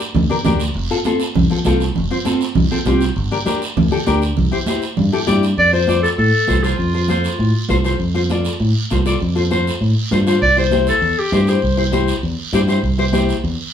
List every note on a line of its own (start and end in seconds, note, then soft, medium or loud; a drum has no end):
0.14 0.26 D2 medium
0.14 high conga soft
0.14 low conga medium
0.14 long guiro medium
0.30 0.35 D4 medium
0.30 0.35 G4 medium
0.30 0.35 A#4 medium
0.45 0.69 D2 medium
0.45 0.60 D4 medium
0.45 0.61 G4 medium
0.45 0.61 A#4 medium
0.45 high conga medium
0.45 low conga medium
0.45 short guiro medium
0.60 short guiro medium
0.74 0.87 F1 medium
0.74 high conga soft
0.74 long guiro medium
0.90 0.95 C4 medium
0.90 0.95 F4 medium
0.90 0.96 A4 medium
1.04 1.21 C4 medium
1.04 1.21 F4 medium
1.04 1.21 A4 medium
1.04 high conga medium
1.04 short guiro medium
1.20 short guiro medium
1.35 1.47 C2 medium
1.35 high conga soft
1.35 low conga medium
1.35 long guiro medium
1.50 1.55 C4 medium
1.50 1.56 F4 medium
1.50 1.56 A4 medium
1.65 1.89 C2 medium
1.65 1.81 C4 medium
1.65 1.81 F4 medium
1.65 1.82 A4 medium
1.65 high conga medium
1.65 short guiro medium
1.80 short guiro medium
1.95 2.08 F1 medium
1.95 high conga soft
1.95 low conga medium
1.95 long guiro medium
2.10 2.16 C4 medium
2.10 2.16 F4 medium
2.10 2.16 C5 medium
2.25 2.41 C4 medium
2.25 2.41 F4 medium
2.25 2.42 A4 medium
2.25 high conga medium
2.25 short guiro medium
2.41 short guiro medium
2.55 2.67 C2 medium
2.55 high conga soft
2.55 low conga medium
2.55 long guiro medium
2.71 2.76 C4 medium
2.71 2.77 F4 medium
2.71 2.77 A4 medium
2.85 3.10 C2 medium
2.85 3.02 C4 medium
2.85 3.02 F4 medium
2.85 3.02 G4 medium
2.85 high conga medium
2.85 short guiro medium
3.01 short guiro medium
3.16 3.28 G1 loud
3.16 high conga soft
3.16 long guiro medium
3.31 3.37 D4 medium
3.31 3.37 G4 medium
3.31 3.37 A#4 medium
3.45 3.62 D4 medium
3.45 3.62 G4 medium
3.45 3.62 A#4 medium
3.45 high conga medium
3.45 short guiro medium
3.62 short guiro medium
3.77 3.89 D2 loud
3.77 high conga soft
3.77 low conga medium
3.77 long guiro medium
3.91 3.97 D4 medium
3.91 3.97 G4 medium
3.91 3.97 A4 medium
4.06 4.31 D2 medium
4.06 4.23 D4 medium
4.06 4.23 G4 medium
4.06 4.23 A#4 medium
4.06 high conga medium
4.06 short guiro medium
4.22 short guiro medium
4.37 4.49 C2 loud
4.37 high conga soft
4.37 low conga medium
4.37 long guiro medium
4.51 4.57 E4 medium
4.51 4.57 G4 medium
4.51 4.57 C5 medium
4.66 4.83 E4 medium
4.66 4.83 G4 medium
4.66 4.83 C5 medium
4.66 high conga medium
4.66 short guiro medium
4.82 short guiro medium
4.97 5.09 G2 medium
4.97 high conga soft
4.97 low conga medium
4.97 long guiro medium
5.12 5.18 E4 medium
5.12 5.18 G4 medium
5.12 5.18 A4 medium
5.26 5.52 G2 medium
5.26 5.43 E4 medium
5.26 5.43 G4 medium
5.26 5.43 D5 medium
5.26 high conga medium
5.26 short guiro medium
5.43 short guiro medium
5.57 6.06 F2 medium
5.57 5.72 D5 loud
5.57 high conga soft
5.57 long guiro medium
5.73 5.78 F4 medium
5.73 5.78 A4 medium
5.73 6.01 C5 medium
5.73 5.78 C5 medium
5.87 6.09 F4 medium
5.87 6.09 A4 medium
5.87 6.09 D5 medium
5.87 high conga medium
5.87 short guiro medium
6.03 6.10 A4 medium
6.03 short guiro medium
6.18 6.30 A2 medium
6.18 6.65 A4 medium
6.18 high conga soft
6.18 long guiro medium
6.47 6.73 C2 medium
6.47 6.53 F4 medium
6.47 6.54 A4 medium
6.47 6.54 C5 medium
6.47 high conga medium
6.47 short guiro medium
6.63 6.74 F4 medium
6.63 7.85 F4 medium
6.63 6.74 A4 medium
6.63 6.75 C5 medium
6.63 short guiro medium
6.78 7.27 F2 medium
6.78 high conga soft
6.78 long guiro medium
6.94 6.99 F4 medium
6.94 6.99 A4 medium
6.94 6.99 C5 medium
7.08 7.30 F4 medium
7.08 7.30 A4 medium
7.08 7.31 C5 medium
7.08 high conga medium
7.08 short guiro medium
7.24 short guiro medium
7.38 7.51 A2 medium
7.38 high conga soft
7.38 long guiro medium
7.69 7.94 C2 loud
7.69 7.75 F4 medium
7.69 7.75 A4 medium
7.69 7.75 C5 medium
7.69 high conga medium
7.69 short guiro medium
7.84 7.95 F4 medium
7.84 7.95 A4 medium
7.84 7.96 C5 medium
7.84 short guiro medium
7.99 8.48 F2 medium
7.99 high conga soft
7.99 long guiro medium
8.14 8.20 F4 medium
8.14 8.20 A4 medium
8.14 8.20 C5 medium
8.30 8.51 F4 medium
8.30 8.52 A4 medium
8.30 8.52 D5 medium
8.30 high conga medium
8.30 short guiro medium
8.45 short guiro medium
8.60 8.72 A2 medium
8.60 high conga soft
8.60 long guiro medium
8.90 9.15 C2 medium
8.90 8.96 F4 medium
8.90 8.96 A4 medium
8.90 8.96 C5 medium
8.90 high conga medium
8.90 short guiro medium
9.05 9.16 F4 medium
9.05 9.16 A4 medium
9.05 9.17 D5 medium
9.05 short guiro medium
9.20 9.70 F2 medium
9.20 high conga soft
9.20 long guiro medium
9.35 9.41 F4 medium
9.35 9.41 A4 medium
9.35 9.41 C5 medium
9.51 9.72 F4 medium
9.51 9.72 A4 medium
9.51 9.72 C5 medium
9.51 high conga medium
9.51 short guiro medium
9.67 short guiro medium
9.81 9.93 A2 medium
9.81 high conga soft
9.81 long guiro medium
10.11 10.36 G2 medium
10.11 10.17 F4 medium
10.11 10.17 A4 medium
10.11 10.17 C5 medium
10.11 high conga medium
10.11 short guiro medium
10.27 10.37 F4 medium
10.27 10.37 A4 medium
10.27 10.38 C5 medium
10.27 short guiro medium
10.41 10.90 C2 medium
10.41 10.56 D5 loud
10.41 high conga soft
10.41 long guiro medium
10.56 10.62 E4 medium
10.56 10.62 G4 medium
10.56 10.63 C5 medium
10.56 10.86 C5 medium
10.71 10.93 E4 medium
10.71 10.93 G4 medium
10.71 10.93 C5 medium
10.71 high conga medium
10.71 short guiro medium
10.87 11.20 A4 medium
10.87 short guiro medium
11.02 11.14 E2 medium
11.02 high conga soft
11.02 long guiro medium
11.19 11.33 G4 medium
11.32 11.56 G2 medium
11.32 11.38 E4 medium
11.32 11.38 G4 medium
11.32 11.51 G4 medium
11.32 11.38 C5 medium
11.32 high conga medium
11.32 short guiro medium
11.47 11.58 E4 medium
11.47 11.58 G4 medium
11.47 11.59 C5 medium
11.47 11.94 C5 medium
11.47 short guiro medium
11.62 12.11 C2 medium
11.62 high conga soft
11.62 long guiro medium
11.77 11.83 E4 medium
11.77 11.83 G4 soft
11.77 11.83 C5 medium
11.92 12.14 E4 medium
11.92 12.14 G4 medium
11.92 12.14 C5 medium
11.92 high conga medium
11.92 short guiro medium
12.08 short guiro medium
12.23 12.35 E2 medium
12.23 high conga soft
12.23 long guiro medium
12.53 12.77 G2 loud
12.53 12.59 E4 medium
12.53 12.59 G4 medium
12.53 12.59 C5 medium
12.53 high conga medium
12.53 short guiro medium
12.68 12.79 E4 medium
12.68 12.79 G4 medium
12.68 12.79 C5 medium
12.68 short guiro medium
12.83 13.32 C2 medium
12.83 high conga soft
12.83 long guiro medium
12.98 13.04 E4 medium
12.98 13.04 G4 medium
12.98 13.04 C5 medium
13.12 13.34 E4 medium
13.12 13.35 G4 medium
13.12 13.35 C5 medium
13.12 high conga medium
13.12 short guiro medium
13.29 short guiro medium
13.44 13.56 E2 medium
13.44 high conga soft
13.44 long guiro medium